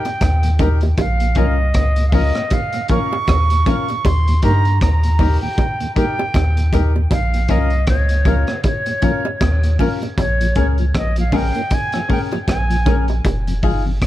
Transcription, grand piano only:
0, 0, Header, 1, 2, 480
1, 0, Start_track
1, 0, Tempo, 766284
1, 616, Time_signature, 4, 2, 24, 8
1, 8812, End_track
2, 0, Start_track
2, 0, Title_t, "Grand piano"
2, 0, Program_c, 0, 0
2, 373, Note_on_c, 0, 63, 90
2, 378, Note_on_c, 0, 67, 79
2, 381, Note_on_c, 0, 70, 107
2, 487, Note_off_c, 0, 63, 0
2, 489, Note_off_c, 0, 67, 0
2, 491, Note_off_c, 0, 70, 0
2, 854, Note_on_c, 0, 61, 97
2, 857, Note_on_c, 0, 65, 80
2, 861, Note_on_c, 0, 70, 98
2, 967, Note_off_c, 0, 61, 0
2, 969, Note_off_c, 0, 65, 0
2, 971, Note_off_c, 0, 70, 0
2, 1332, Note_on_c, 0, 61, 81
2, 1337, Note_on_c, 0, 65, 80
2, 1340, Note_on_c, 0, 70, 95
2, 1446, Note_off_c, 0, 61, 0
2, 1449, Note_off_c, 0, 65, 0
2, 1450, Note_off_c, 0, 70, 0
2, 1815, Note_on_c, 0, 61, 85
2, 1819, Note_on_c, 0, 65, 79
2, 1822, Note_on_c, 0, 70, 101
2, 1927, Note_off_c, 0, 61, 0
2, 1929, Note_off_c, 0, 65, 0
2, 1931, Note_off_c, 0, 70, 0
2, 2293, Note_on_c, 0, 61, 94
2, 2296, Note_on_c, 0, 65, 85
2, 2300, Note_on_c, 0, 70, 95
2, 2406, Note_off_c, 0, 61, 0
2, 2408, Note_off_c, 0, 65, 0
2, 2410, Note_off_c, 0, 70, 0
2, 2775, Note_on_c, 0, 63, 92
2, 2778, Note_on_c, 0, 67, 85
2, 2780, Note_on_c, 0, 70, 98
2, 2887, Note_off_c, 0, 63, 0
2, 2888, Note_off_c, 0, 67, 0
2, 2890, Note_off_c, 0, 70, 0
2, 3250, Note_on_c, 0, 63, 83
2, 3253, Note_on_c, 0, 67, 82
2, 3256, Note_on_c, 0, 70, 99
2, 3364, Note_off_c, 0, 63, 0
2, 3366, Note_off_c, 0, 67, 0
2, 3368, Note_off_c, 0, 70, 0
2, 3731, Note_on_c, 0, 63, 88
2, 3733, Note_on_c, 0, 67, 81
2, 3738, Note_on_c, 0, 70, 102
2, 3845, Note_off_c, 0, 63, 0
2, 3846, Note_off_c, 0, 67, 0
2, 3849, Note_off_c, 0, 70, 0
2, 4213, Note_on_c, 0, 63, 93
2, 4214, Note_on_c, 0, 67, 85
2, 4218, Note_on_c, 0, 70, 102
2, 4326, Note_off_c, 0, 63, 0
2, 4327, Note_off_c, 0, 67, 0
2, 4328, Note_off_c, 0, 70, 0
2, 4693, Note_on_c, 0, 61, 93
2, 4695, Note_on_c, 0, 65, 86
2, 4698, Note_on_c, 0, 70, 110
2, 4806, Note_off_c, 0, 61, 0
2, 4807, Note_off_c, 0, 65, 0
2, 4809, Note_off_c, 0, 70, 0
2, 5174, Note_on_c, 0, 61, 82
2, 5178, Note_on_c, 0, 65, 79
2, 5180, Note_on_c, 0, 70, 95
2, 5287, Note_off_c, 0, 61, 0
2, 5289, Note_off_c, 0, 65, 0
2, 5289, Note_off_c, 0, 70, 0
2, 5650, Note_on_c, 0, 61, 90
2, 5653, Note_on_c, 0, 65, 76
2, 5657, Note_on_c, 0, 70, 98
2, 5765, Note_off_c, 0, 61, 0
2, 5766, Note_off_c, 0, 65, 0
2, 5768, Note_off_c, 0, 70, 0
2, 6133, Note_on_c, 0, 61, 86
2, 6137, Note_on_c, 0, 65, 80
2, 6142, Note_on_c, 0, 70, 98
2, 6247, Note_off_c, 0, 61, 0
2, 6248, Note_off_c, 0, 65, 0
2, 6251, Note_off_c, 0, 70, 0
2, 6613, Note_on_c, 0, 61, 93
2, 6617, Note_on_c, 0, 68, 84
2, 6620, Note_on_c, 0, 70, 92
2, 6727, Note_off_c, 0, 61, 0
2, 6729, Note_off_c, 0, 68, 0
2, 6730, Note_off_c, 0, 70, 0
2, 7095, Note_on_c, 0, 61, 78
2, 7099, Note_on_c, 0, 68, 77
2, 7101, Note_on_c, 0, 70, 88
2, 7208, Note_off_c, 0, 61, 0
2, 7210, Note_off_c, 0, 68, 0
2, 7211, Note_off_c, 0, 70, 0
2, 7571, Note_on_c, 0, 61, 85
2, 7575, Note_on_c, 0, 68, 79
2, 7578, Note_on_c, 0, 70, 93
2, 7686, Note_off_c, 0, 61, 0
2, 7688, Note_off_c, 0, 68, 0
2, 7690, Note_off_c, 0, 70, 0
2, 8054, Note_on_c, 0, 61, 88
2, 8059, Note_on_c, 0, 68, 80
2, 8064, Note_on_c, 0, 70, 97
2, 8168, Note_off_c, 0, 61, 0
2, 8171, Note_off_c, 0, 68, 0
2, 8173, Note_off_c, 0, 70, 0
2, 8535, Note_on_c, 0, 63, 95
2, 8540, Note_on_c, 0, 65, 88
2, 8542, Note_on_c, 0, 68, 105
2, 8649, Note_off_c, 0, 63, 0
2, 8651, Note_off_c, 0, 65, 0
2, 8653, Note_off_c, 0, 68, 0
2, 8812, End_track
0, 0, End_of_file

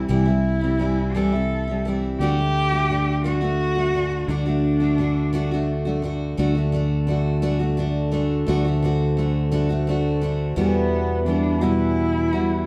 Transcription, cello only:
0, 0, Header, 1, 2, 480
1, 0, Start_track
1, 0, Tempo, 698487
1, 63, Time_signature, 6, 3, 24, 8
1, 8703, End_track
2, 0, Start_track
2, 0, Title_t, "Cello"
2, 0, Program_c, 0, 42
2, 76, Note_on_c, 0, 64, 84
2, 790, Note_on_c, 0, 69, 75
2, 800, Note_off_c, 0, 64, 0
2, 1268, Note_off_c, 0, 69, 0
2, 1510, Note_on_c, 0, 67, 100
2, 2202, Note_off_c, 0, 67, 0
2, 2234, Note_on_c, 0, 66, 96
2, 2955, Note_on_c, 0, 62, 80
2, 2965, Note_off_c, 0, 66, 0
2, 4152, Note_off_c, 0, 62, 0
2, 7268, Note_on_c, 0, 59, 84
2, 7719, Note_off_c, 0, 59, 0
2, 7748, Note_on_c, 0, 62, 78
2, 7992, Note_on_c, 0, 64, 88
2, 8003, Note_off_c, 0, 62, 0
2, 8703, Note_off_c, 0, 64, 0
2, 8703, End_track
0, 0, End_of_file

